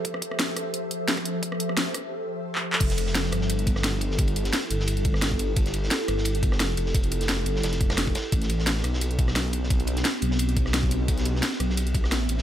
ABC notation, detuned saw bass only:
X:1
M:4/4
L:1/8
Q:"Swing 16ths" 1/4=174
K:Flyd
V:1 name="Detuned saw bass" clef=bass
z8 | z8 | F,,,3 G,,,4- G,,,- | G,,,2 z G,,,4- G,,,- |
G,,,2 z G,,,3 F,,, F,,,- | F,,,3 G,,, F,,,3 z | A,,,3 B,,,4- B,,,- | B,,,2 z B,,,4- B,,,- |
B,,,2 z B,,,3 A,,, A,,, |]